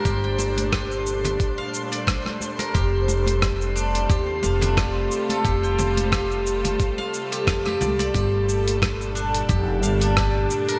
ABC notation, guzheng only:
X:1
M:4/4
L:1/16
Q:"Swing 16ths" 1/4=89
K:Gm
V:1 name="Guzheng"
G g c2 G z4 f2 d c z2 B | G4 z2 D2 G z f D G z2 A | G g c2 G z4 f z G f G d d | G4 z2 D2 G z f D G z2 B |]